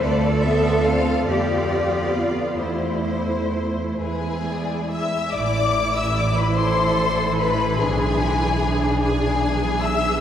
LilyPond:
<<
  \new Staff \with { instrumentName = "Violin section" } { \time 6/8 \key a \minor \tempo 4. = 48 << { d''4. d''4. | c''4. gis''4 e'''8 | d'''8. e'''16 d'''16 b''16 c'''4 b''8 | gis''4. gis''4 e'''8 | } \\ { r2. | r4. b'8 d''8 e''8 | r2. | r2. | } >> }
  \new Staff \with { instrumentName = "Violin section" } { \time 6/8 \key a \minor d''8 e''8 f''8 d''4. | c''4. gis'4 e''8 | d''8. e''16 d''16 b'16 c''4 b'8 | gis'4. gis'4 e''8 | }
  \new Staff \with { instrumentName = "Cello section" } { \time 6/8 \key a \minor a'4. g'4 f'8 | e'4. r4. | r4. a'4. | gis'8 e'8 gis'2 | }
  \new Staff \with { instrumentName = "Viola section" } { \time 6/8 \key a \minor << { f'2. | e'4. e'4~ e'16 r16 | e'2. | d'2. | } \\ { a8 b8 c'8 b4. | a4. gis4~ gis16 r16 | e2.~ | e2. | } >> }
  \new Staff \with { instrumentName = "Double bass section" } { \clef bass \time 6/8 \key a \minor d,4. f,4. | e,4. e,4~ e,16 r16 | a,,2. | b,,2. | }
>>